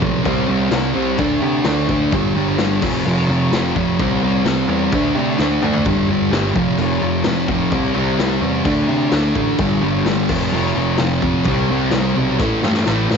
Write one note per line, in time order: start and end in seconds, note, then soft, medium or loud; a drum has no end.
0.01 0.21 B1 loud
0.01 0.24 F2 medium
0.01 0.22 C3 medium
0.01 0.24 F3 loud
0.01 kick loud
0.23 0.45 C2 loud
0.23 0.47 C3 medium
0.23 0.48 G3 medium
0.23 0.50 C4 loud
0.23 kick loud
0.23 crash medium
0.48 0.68 C2 loud
0.48 0.70 C3 medium
0.48 0.71 G3 medium
0.48 0.72 C4 loud
0.71 0.91 C2 loud
0.71 0.94 C3 loud
0.71 0.95 G3 loud
0.71 0.96 C4 loud
0.71 snare loud
0.71 crash medium
0.95 1.15 C2 loud
0.95 1.18 C3 medium
0.95 1.18 G3 medium
0.95 1.18 C4 loud
1.18 1.38 D2 loud
1.18 1.40 D3 loud
1.18 1.42 A3 loud
1.18 1.42 D4 loud
1.18 kick loud
1.18 crash medium
1.41 1.61 C3 loud
1.41 1.64 D3 medium
1.41 1.65 A3 medium
1.41 1.66 D4 loud
1.64 1.85 D2 medium
1.64 1.87 D3 loud
1.64 1.88 A3 loud
1.64 1.89 D4 loud
1.64 snare loud
1.64 crash medium
1.89 2.08 D2 medium
1.89 2.11 D3 medium
1.89 2.11 A3 medium
1.89 2.12 D4 loud
1.89 kick medium
2.12 2.32 G1 loud
2.12 2.34 G2 loud
2.12 2.35 D3 loud
2.12 2.36 G3 loud
2.12 kick loud
2.12 crash medium
2.35 2.55 G1 loud
2.35 2.58 G2 medium
2.35 2.59 D3 medium
2.35 2.60 G3 medium
2.58 2.78 G1 loud
2.58 2.81 G2 medium
2.58 2.82 D3 loud
2.58 2.82 G3 loud
2.58 snare loud
2.58 crash medium
2.82 3.02 F1 loud
2.82 3.04 F2 loud
2.82 3.06 C3 loud
2.82 3.06 F3 loud
2.82 kick loud
2.82 crash loud
3.05 3.25 F1 loud
3.05 3.28 F2 loud
3.05 3.29 C3 loud
3.05 3.30 F3 loud
3.05 crash medium
3.28 3.48 F1 loud
3.28 3.51 F2 medium
3.28 3.52 C3 medium
3.28 3.53 F3 loud
3.52 3.71 F1 loud
3.52 3.74 F2 loud
3.52 3.76 C3 loud
3.52 3.77 F3 loud
3.52 snare loud
3.52 crash medium
3.76 3.95 F1 loud
3.76 3.98 F2 medium
3.76 3.99 C3 loud
3.76 3.99 F3 loud
3.76 kick loud
3.99 4.18 C2 loud
3.99 4.22 C3 medium
3.99 4.23 G3 loud
3.99 4.24 C4 loud
3.99 kick loud
3.99 crash medium
4.22 4.42 C2 loud
4.22 4.44 C3 medium
4.22 4.45 G3 loud
4.22 4.46 C4 loud
4.44 4.64 C2 loud
4.44 4.68 C3 loud
4.44 4.69 G3 loud
4.44 4.70 C4 loud
4.44 snare loud
4.44 crash medium
4.68 4.88 E2 loud
4.68 4.91 C3 medium
4.68 4.92 G3 loud
4.68 4.92 C4 medium
4.92 5.12 D2 loud
4.92 5.15 D3 loud
4.92 5.16 A3 loud
4.92 5.17 D4 loud
4.92 kick loud
4.92 crash medium
5.15 5.35 C3 medium
5.15 5.37 D3 medium
5.15 5.39 A3 medium
5.15 5.40 D4 medium
5.38 5.58 D2 loud
5.38 5.61 D3 loud
5.38 5.62 A3 loud
5.38 5.63 D4 loud
5.38 snare medium
5.62 5.81 D2 medium
5.62 5.84 D3 medium
5.62 5.85 A3 loud
5.62 5.85 D4 loud
5.62 mid tom loud
5.73 floor tom loud
5.85 6.05 G1 loud
5.85 6.07 G2 medium
5.85 6.09 D3 loud
5.85 6.10 G3 loud
5.85 kick loud
5.85 crash medium
6.08 6.27 G1 loud
6.08 6.30 G2 medium
6.08 6.31 D3 loud
6.08 6.32 G3 loud
6.30 6.50 G1 medium
6.30 6.54 G2 loud
6.30 6.54 D3 loud
6.30 6.55 G3 loud
6.30 snare loud
6.30 crash medium
6.55 6.75 F1 medium
6.55 6.77 F2 medium
6.55 6.78 C3 loud
6.55 6.80 F3 loud
6.55 kick loud
6.77 6.97 F1 loud
6.77 7.00 F2 loud
6.77 7.01 C3 loud
6.77 7.02 F3 loud
6.77 crash medium
7.01 7.21 F1 loud
7.01 7.24 F2 medium
7.01 7.25 C3 medium
7.01 7.26 F3 medium
7.24 7.45 F1 loud
7.24 7.47 F2 loud
7.24 7.48 C3 loud
7.24 7.49 F3 loud
7.24 snare loud
7.24 crash medium
7.48 7.68 F1 loud
7.48 7.71 F2 medium
7.48 7.70 C3 medium
7.48 7.72 F3 loud
7.48 kick medium
7.71 7.91 C2 loud
7.71 7.94 C3 loud
7.71 7.94 G3 loud
7.71 7.95 C4 loud
7.71 kick loud
7.71 crash medium
7.94 8.14 C2 medium
7.94 8.18 C3 loud
7.94 8.18 G3 medium
7.94 8.19 C4 loud
8.18 8.37 C2 loud
8.18 8.41 C3 loud
8.18 8.42 G3 loud
8.18 8.43 C4 loud
8.18 snare loud
8.18 crash medium
8.41 8.61 E2 medium
8.41 8.64 C3 medium
8.41 8.65 G3 medium
8.41 8.65 C4 medium
8.65 8.85 D2 loud
8.65 8.87 D3 loud
8.65 8.88 A3 loud
8.65 8.90 D4 loud
8.65 kick loud
8.65 crash medium
8.88 9.08 C3 loud
8.88 9.10 D3 medium
8.88 9.11 A3 medium
8.88 9.12 D4 loud
9.11 9.31 D2 loud
9.11 9.34 D3 loud
9.11 9.35 A3 loud
9.11 9.36 D4 loud
9.11 snare loud
9.11 crash medium
9.35 9.55 A1 medium
9.35 9.58 D3 medium
9.35 9.58 A3 medium
9.35 9.58 D4 loud
9.35 kick medium
9.58 9.78 G1 loud
9.58 9.81 G2 medium
9.58 9.82 D3 loud
9.58 9.83 G3 loud
9.58 kick loud
9.58 crash medium
9.81 10.01 G1 loud
9.81 10.04 G2 medium
9.81 10.05 D3 loud
9.81 10.07 G3 loud
10.04 10.24 G1 loud
10.04 10.28 G2 loud
10.04 10.28 D3 loud
10.04 snare loud
10.04 crash medium
10.08 10.29 G3 loud
10.29 10.49 F1 medium
10.29 10.52 F2 medium
10.29 10.53 C3 loud
10.29 10.53 F3 loud
10.29 kick loud
10.29 crash loud
10.52 10.72 F1 loud
10.52 10.74 F2 loud
10.52 10.75 C3 loud
10.52 10.76 F3 loud
10.52 crash medium
10.75 10.95 F1 loud
10.75 10.98 F2 medium
10.75 10.99 C3 loud
10.75 11.00 F3 loud
10.98 11.19 F1 loud
10.98 11.21 F2 loud
10.98 11.22 C3 loud
10.98 11.23 F3 loud
10.98 snare loud
10.98 crash medium
11.22 11.42 F1 medium
11.22 11.45 F2 medium
11.22 11.45 C3 medium
11.22 11.46 F3 medium
11.22 kick medium
11.44 11.65 C2 loud
11.44 11.68 C3 loud
11.44 11.70 G3 loud
11.44 kick loud
11.44 crash medium
11.48 11.71 C4 loud
11.70 11.89 C2 loud
11.70 11.91 C3 loud
11.70 11.92 G3 loud
11.70 11.93 C4 loud
11.91 12.12 C2 loud
11.91 12.14 C3 loud
11.91 12.15 G3 loud
11.91 12.16 C4 loud
11.91 snare loud
11.91 crash medium
12.15 12.36 B1 loud
12.15 12.38 C3 medium
12.15 12.39 G3 loud
12.15 12.39 C4 loud
12.39 12.59 A1 loud
12.39 12.61 A2 loud
12.39 12.62 E3 loud
12.39 12.63 A3 loud
12.39 kick loud
12.39 snare medium
12.62 12.83 G2 loud
12.62 12.84 A2 medium
12.62 12.85 E3 medium
12.62 12.86 A3 medium
12.62 snare medium
12.74 snare medium
12.85 13.07 A1 loud
12.85 13.08 A2 loud
12.85 13.09 E3 loud
12.85 13.10 A3 loud
12.85 snare loud
13.09 13.17 A1 medium
13.09 13.17 A2 medium
13.09 13.17 E3 medium
13.09 13.17 A3 loud
13.09 snare loud